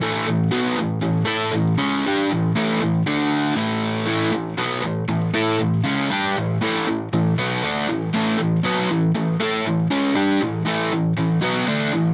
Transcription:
X:1
M:4/4
L:1/8
Q:1/4=118
K:A
V:1 name="Overdriven electric guitar" clef=bass
[A,,E,A,] [A,,E,] [B,,F,B,] [A,,E,] [A,,E,] [A,EA] [A,,E,] [C,G,C] | [=G,D=G] [A,,E,] [A,,E,A,] [A,,E,] [D,A,D]2 [A,,E,A,]2 | [A,,E,A,] [A,,E,] [B,,F,B,] [A,,E,] [A,,E,] [A,EA] [A,,E,] [C,G,C] | [=G,D=G] [A,,E,] [A,,E,A,] [A,,E,] [A,,E,] [B,,F,B,] [D,A,D] [A,,E,] |
[A,,E,A,] [A,,E,] [B,,F,B,] [A,,E,] [A,,E,] [A,EA] [A,,E,] [C,G,C] | [=G,D=G] [A,,E,] [A,,E,A,] [A,,E,] [A,,E,] [B,,F,B,] [D,A,D] [A,,E,] |]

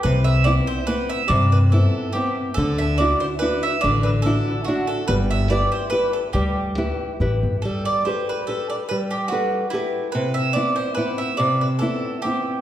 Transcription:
X:1
M:3/4
L:1/8
Q:"Swing" 1/4=143
K:G
V:1 name="Mandolin"
B e d c B e | d B A2 G2 | A e d c B e | d B A2 F A |
B e d c B A | G4 z2 | A d c B A d | B G F2 E2 |
B e d c B e | d B A2 G2 |]
V:2 name="Nylon-string guitar"
C,2 [B,CE]2 [B,CE]2 | C,2 [B,CE]2 [B,CE]2 | D,2 [DEF]2 [DEF]2 | D,2 [DEF]2 [DEF]2 |
G,2 [EGB]2 [EGB]2 | G,2 [EGB]2 [EGB]2 | G,2 [GAB]2 [GAB]2 | G,2 [G,AB]2 [GAB]2 |
C,2 [B,CE]2 [B,CE]2 | C,2 [B,CE]2 [B,CE]2 |]
V:3 name="Upright bass" clef=bass
C,,4 z2 | G,,4 z2 | D,,4 z2 | A,,,4 z2 |
G,,,4 z2 | D,,4 A,,, G,,, | z6 | z6 |
z6 | z6 |]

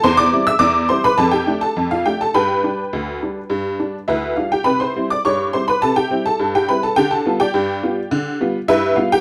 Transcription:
X:1
M:2/4
L:1/16
Q:1/4=104
K:C
V:1 name="Honky-tonk piano"
[cc'] [dd']2 [ee'] [dd']2 [cc'] [Bb] | [Aa] [Gg]2 [Aa]2 [Ff] [Gg] [Aa] | [Bgb]8- | [Bgb]4 [EBe]2 [Ff] [Gg] |
[Bb] [cc']2 [dd'] [_d_d']2 [cc'] [Bb] | [Aa] [Gg]2 [Aa]2 [Gg] [Bb] [Aa] | [Gg] [Aa]2 [Gdg]4- [Gdg]- | [Gdg]4 [EBe]2 [Ff] [Gg] |]
V:2 name="Honky-tonk piano" clef=bass
E,,2 [G,CE]2 E,,2 [G,CE]2 | F,,2 [A,D]2 F,,2 [A,D]2 | G,,2 [G,D]2 D,,2 [G,D]2 | G,,2 [G,D]2 D,,2 [G,D]2 |
C,2 [G,CE]2 G,,2 [G,CE]2 | C,2 [G,CE]2 G,,2 [G,CE]2 | D,2 [G,B,F]2 G,,2 [G,B,F]2 | D,2 [G,B,F]2 G,,2 [G,B,]2 |]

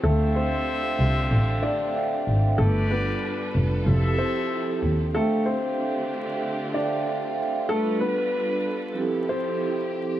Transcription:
X:1
M:4/4
L:1/16
Q:"Swing 16ths" 1/4=94
K:Ddor
V:1 name="Trumpet section"
[Ace]12- [Ace]2 z2 | [GBd]6 z2 [Ae]6 z2 | z16 | z16 |]
V:2 name="Vibraphone"
[DAcefg]6 z4 [DAcefg]2 [DAcefg]3 z | [G,DFAB]6 z2 [F,CEGA]2 [F,CEGA]2 [F,CEGA]3 z | [DAcefg]6 z4 [DAcefg]2 [DAcefg]3 z | [G,DFAB]6 z2 [F,CEGA]2 [F,CEGA]2 [F,CEGA]3 z |]
V:3 name="Upright piano"
[A,A]2 [Cc]8 [Dd]6 | [A,A]2 [B,B]8 [Cc]6 | [A,A]2 [Cc]8 [Dd]6 | [A,A]2 [B,B]8 [Cc]6 |]
V:4 name="String section"
[D,A,CDFG]16 | [G,DFAB]8 [C,F,EG]8 | [D,A,CDFG]16 | [G,DAB]8 [C,F,EG]8 |]
V:5 name="Double bass" clef=bass
D,,4 z2 C,,2 A,,,2 z4 ^G,,,2 | G,,,4 z2 F,,,2 F,,,2 z4 _E,,2 | z16 | z16 |]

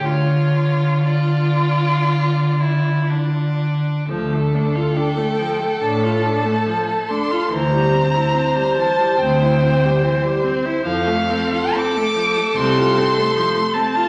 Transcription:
X:1
M:4/4
L:1/16
Q:1/4=71
K:Dm
V:1 name="Violin"
^c4 d8- d2 z2 | z4 g4 a6 c'2 | b6 a2 g6 z2 | f4 d'4 c'6 a2 |]
V:2 name="Violin"
F4 F6 E2 D4 | A16 | c16 | A16 |]
V:3 name="Viola"
F12- F2 z2 | F, A, D F D A, F, A, D F D A, F, A, D F | E, G, C E C G, E, G, C E C G, E, G, C E | F, A, C F C A, F, A, C F C A, F, A, C F |]
V:4 name="Cello" clef=bass
D,16 | D,,4 z4 A,,4 z4 | D,,4 z4 D,,4 z4 | F,,4 z4 C,,4 z4 |]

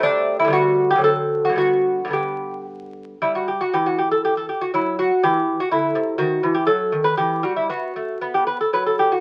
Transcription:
X:1
M:3/4
L:1/16
Q:1/4=118
K:G
V:1 name="Lute"
D3 E F3 G A3 F | F4 G4 z4 | [K:Em] E F G F G F G A G A G F | E2 F2 G3 F E4 |
F3 G A3 B G2 F E | F4- F G B A B A G F |]
V:2 name="Lute" clef=bass
[C,A,C]4 [D,G,B,]4 [D,F,C]4 | [G,,D,B,]4 [G,,D,B,]8 | [K:Em] G,4 E,8 | F,4 E,4 D,2 C,2 |
^D,2 E,2 F,2 D,2 E,2 G,2 | B,2 A,2 B,4 F,4 |]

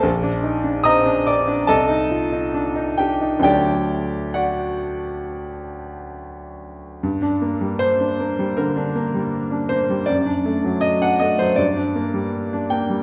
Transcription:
X:1
M:4/4
L:1/16
Q:1/4=76
K:Gm
V:1 name="Grand piano"
z4 [ebe']2 [dd']2 [Aea]6 [Gg]2 | [Gdg]4 [^Fd^f]8 z4 | z4 c4 B6 c2 | d4 e ^f e c d6 g2 |]
V:2 name="Grand piano"
B,,, D E D C D C D C,, E F E D E D E | [D,,^F,A,D]16 | G,, D B, G,2 D B, G, D, D B, G,2 D B, G, | ^F,, D A, ^F,2 D A, F, G,, D B, G,2 D B, G, |]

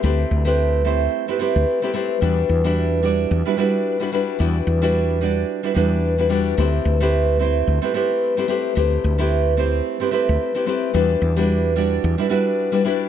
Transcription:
X:1
M:4/4
L:1/16
Q:"Swing 16ths" 1/4=110
K:Em
V:1 name="Nylon-string guitar"
[A,CEGB]3 [A,CEGB]3 [A,CEGc]3 [A,CEGB] [A,CEGB]3 [A,CEGB] [A,CEGB]2 | [G,DEFB]3 [G,DEFB]3 [G,DEFd]3 [G,DEFB] [G,DEFB]3 [G,DEFB] [G,DEFB]2 | [G,DEFB]3 [G,DEFB]3 [G,DEFd]3 [G,DEFB] [G,DEFB]3 [G,DEFB] [G,DEFB]2 | [A,CEGB]3 [A,CEGB]3 [A,CEGc]3 [A,CEGB] [A,CEGB]3 [A,CEGB] [A,CEGB]2 |
[A,CEGB]3 [A,CEGB]3 [A,CEGc]3 [A,CEGB] [A,CEGB]3 [A,CEGB] [A,CEGB]2 | [G,DEFB]3 [G,DEFB]3 [G,DEFd]3 [G,DEFB] [G,DEFB]3 [G,DEFB] [G,DEFB]2 |]
V:2 name="Fretless electric bass" clef=bass
D,, z D,,4- D,, z4 D,, z4 | E,, z E,,4- E,, z E,, z6 z | E,, z E,,4- E,, z3 E,,4- E,, z | D,, z D,,4- D,, z D,, z6 z |
D,, z D,,4- D,, z4 D,, z4 | E,, z E,,4- E,, z E,, z6 z |]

